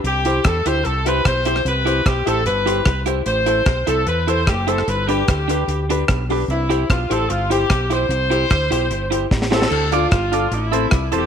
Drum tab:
CC |----------------|----------------|----------------|----------------|
HH |x-x-x-x-x-x-x-x-|x-x-x-x-x-x-x-x-|x-x-x-x-x-x-x-x-|x-x-x-x-x-x-x-o-|
SD |----r-------r--r|----r-------r---|----r-------r--r|----r-------r---|
BD |----o-------o---|----o-------o---|----o-------o---|----o-------o---|

CC |----------------|----------------|x---------------|
HH |x-x-x-x-x-x-x-x-|x-x-x-x-x-x-----|--x-x-x-x-x-x-x-|
SD |----r-------r---|----r-------oooo|----r-------r---|
BD |----o-------o---|----o-------o---|----o-------o---|